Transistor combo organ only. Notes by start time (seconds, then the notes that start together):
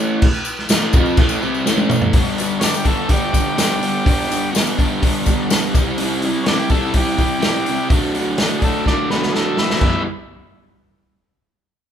2.60 C#4
2.64 D4
2.76 G4
2.86 A4
3.11 G4
6.44 C#4
6.48 D4
6.59 G4
6.70 A4
6.97 G4
8.59 G#4
8.64 A4
8.87 D4
9.10 B3
9.32 G#4
9.36 A4
9.58 E4
9.79 E4